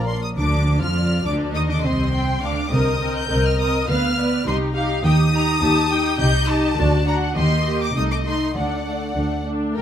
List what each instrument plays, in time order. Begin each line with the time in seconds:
Already playing: double bass section A#1, viola section A#4, violin section D5
0.07 violin section C6
0.23 violin section D#6
0.35 double bass section D2, cello section D3, viola section D4, violin section D6
0.80 double bass section F2, cello section F3, viola section F4, violin section F6
0.96 violin section D5
1.25 double bass section D2, cello section D3, viola section D4, violin section D6
1.54 double bass section D#2, cello section D#3, viola section D#4, violin section D#5 D#6
1.69 cello section D3, viola section D4, violin section D6
1.83 double bass section C2, cello section C3, viola section C4, violin section C6
2.14 violin section G5
2.42 double bass section D2, cello section D3, viola section D4, violin section F5 D6
2.71 double bass section C2, cello section C3, viola section C4 A#4, violin section D#5 D#6
3.01 viola section C4 A#4
3.14 violin section G6
3.29 double bass section C2, cello section C3, viola section C4 A#4, violin section D#5
3.45 violin section F6
3.59 viola section C4 A#4, violin section D#6
3.88 double bass section D2, cello section D3, viola section B3 B4, violin section F5 F6
4.18 viola section B3 B4, violin section D5
4.47 double bass section C2, cello section C3, viola section D#4 G4, violin section D#5 C6
4.76 viola section D#4 G4, violin section F5
5.04 double bass section D#2, cello section D#3, viola section D#4 G4, violin section G5 D#6
5.33 viola section D#4 G4, violin section A#5
5.62 double bass section D#2, cello section D#3, viola section D#4 G4, violin section A5
5.91 viola section D#4 G4, violin section G5
6.20 double bass section C2, cello section C3, viola section D#4 G4, violin section D#5 G6
6.49 viola section D#4 G4, violin section A5
6.77 double bass section D2, cello section D3, viola section D4 F#4, violin section D5
7.06 viola section D4 F#4, violin section F#5 A#5
7.36 double bass section D#2, cello section D#3, viola section A#3 G4, violin section D#5 C6
7.66 viola section A#3 G4
7.82 violin section D6
7.95 double bass section C2, cello section C3, viola section A3 D#4, violin section D#5 D#6
8.11 violin section D6
8.26 viola section A3 D#4, violin section C6
8.55 double bass section D2, cello section D3, viola section A3 D4, violin section D5 F#5
8.87 viola section A3 D4
9.16 double bass section D2, cello section D3, viola section A3 D4
9.47 viola section A3 D4
9.76 double bass section A#1, cello section A#2, viola section A#4, violin section A#4 G5